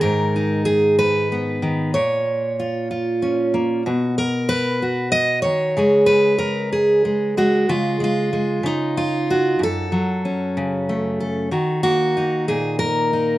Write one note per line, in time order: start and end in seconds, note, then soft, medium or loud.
0.00 1.91 G#2 medium
0.00 1.61 D#3 medium
0.00 0.65 A#4 medium
0.36 1.91 D#4 soft
0.65 0.98 G#4 medium
0.99 1.94 B4 medium
1.32 1.92 B3 soft
1.62 1.95 D#3 medium
1.94 3.86 A#2 medium
1.94 3.54 C#5 medium
2.60 2.90 F4 medium
2.91 3.82 F4 medium
3.22 3.82 C#4 soft
3.54 3.82 A#3 medium
3.86 5.45 B2 medium
3.86 4.18 F#4 soft
4.18 4.82 A#4 medium
4.49 5.11 B4 loud
4.82 5.74 F#4 medium
5.12 5.42 D#5 loud
5.42 5.77 D#3 medium
5.42 6.06 C#5 medium
5.77 7.64 C#3 medium
5.77 7.04 G#3 medium
5.77 6.38 G#4 soft
6.06 7.67 B4 medium
6.38 6.72 A#4 medium
6.73 7.37 G#4 medium
7.05 7.36 G#3 soft
7.37 7.69 G#3 medium
7.37 7.69 F#4 medium
7.69 8.62 C#3 medium
7.69 7.99 G#3 soft
7.69 8.01 F4 medium
8.00 8.32 G#3 medium
8.00 8.96 F4 medium
8.33 8.65 G#3 soft
8.63 9.56 C#3 medium
8.63 9.61 D#4 medium
8.97 9.61 F4 medium
9.30 9.61 F#4 medium
9.59 11.47 F#2 medium
9.63 11.19 A4 loud
9.92 11.51 F#3 medium
10.25 11.48 C#4 soft
10.57 11.48 C#3 medium
10.89 11.49 A3 soft
11.20 11.48 A4 soft
11.51 13.38 D#3 medium
11.51 11.83 F#4 soft
11.83 13.38 A#3 medium
11.83 12.47 F#4 loud
12.17 13.13 D#4 soft
12.48 13.38 A#2 medium
12.48 12.78 G#4 medium
12.79 13.38 A#4 loud
13.13 13.38 D#4 soft